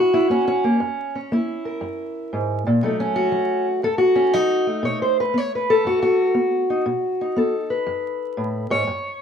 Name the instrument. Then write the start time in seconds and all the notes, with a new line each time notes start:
steel-string acoustic guitar
Already playing: F#2 C#4 E4 F#4
0.14 E4
0.30 A#3 C#4
0.48 C#4
0.64 A#3
0.80 F#2
1.15 C#4
1.32 A#3 E4
1.65 A#4
1.81 F#2
2.33 G#2
2.67 A#2
2.83 B2 F#3 A3 D#4 A4
3.00 C#4
3.16 F#4
3.32 F#3
3.83 F#2 A4
3.98 F#4
4.16 C#4
4.33 F#3 D#4
4.67 A3
4.83 B2 C#5
5.02 C5
5.20 B4
5.34 B3 C#5
5.55 B4
5.70 A4
5.85 F#2 F#4
6.02 F#4
6.34 B3
6.70 D#4
6.86 B2
7.21 D#4
7.36 B3 A4
7.70 B4
7.87 F#2
8.37 A2
8.70 G#2 C#5
8.87 F#2